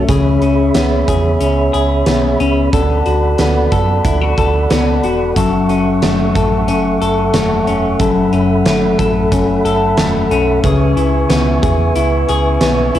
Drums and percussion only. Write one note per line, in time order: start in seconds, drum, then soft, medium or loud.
0.09 kick loud
0.09 closed hi-hat medium
0.42 closed hi-hat soft
0.74 snare loud
0.74 closed hi-hat medium
1.08 kick medium
1.08 closed hi-hat soft
1.41 closed hi-hat medium
1.74 closed hi-hat soft
2.06 snare loud
2.06 closed hi-hat medium
2.40 closed hi-hat soft
2.73 kick loud
2.73 closed hi-hat medium
3.06 closed hi-hat soft
3.38 snare loud
3.38 closed hi-hat medium
3.72 kick medium
3.72 closed hi-hat soft
4.05 kick medium
4.05 closed hi-hat medium
4.38 kick medium
4.38 closed hi-hat soft
4.70 snare loud
4.70 closed hi-hat medium
5.04 closed hi-hat soft
5.36 kick medium
5.36 closed hi-hat medium
5.69 closed hi-hat soft
6.02 snare loud
6.02 closed hi-hat medium
6.35 kick medium
6.35 closed hi-hat soft
6.68 closed hi-hat medium
7.02 closed hi-hat soft
7.34 snare medium
7.34 closed hi-hat medium
7.67 closed hi-hat soft
8.00 kick loud
8.00 closed hi-hat medium
8.33 closed hi-hat soft
8.66 snare loud
8.66 closed hi-hat medium
8.99 kick medium
8.99 closed hi-hat soft
9.32 kick medium
9.32 closed hi-hat medium
9.65 closed hi-hat soft
9.97 snare loud
9.97 closed hi-hat medium
10.31 closed hi-hat soft
10.64 kick loud
10.64 closed hi-hat medium
10.97 closed hi-hat soft
11.30 snare loud
11.30 closed hi-hat medium
11.63 kick loud
11.63 closed hi-hat soft
11.96 closed hi-hat medium
12.29 closed hi-hat soft
12.61 snare medium
12.61 closed hi-hat medium
12.95 closed hi-hat soft